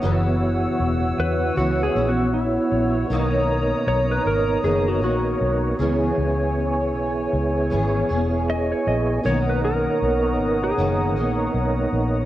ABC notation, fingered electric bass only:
X:1
M:4/4
L:1/8
Q:"Swing 16ths" 1/4=78
K:B
V:1 name="Fingered electric bass" clef=bass
F,,,2 E,,, E,, C,, A,,,2 A,,, | B,,,2 B,,, G,,, F,,, A,,, B,,, C,, | C,,2 B,,, C,, G,,, E,,,2 A,,, | B,,,2 B,,, G,,, F,,, A,,, B,,, A,,, |]